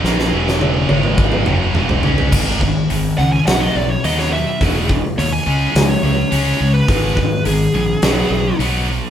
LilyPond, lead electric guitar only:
\new Staff \with { instrumentName = "Lead electric guitar" } { \time 4/4 \key gis \minor \tempo 4 = 105 r1 | r4. fis''16 gis''16 fis''16 dis''16 d''16 cis''16 dis''16 cis''16 e''8 | r4 cis''16 gis''4 cis''4. b'16~ | b'4 gis'2 r4 | }